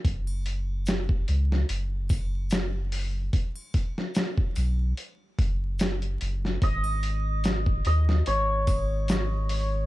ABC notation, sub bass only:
X:1
M:4/4
L:1/8
Q:"Swing 16ths" 1/4=73
K:G#m
V:1 name="Sub bass" clef=bass
F,,,3 C,, F,,,4 | z3 B,,, z F,,,2 F,,, | G,,,3 D,, G,,,4 |]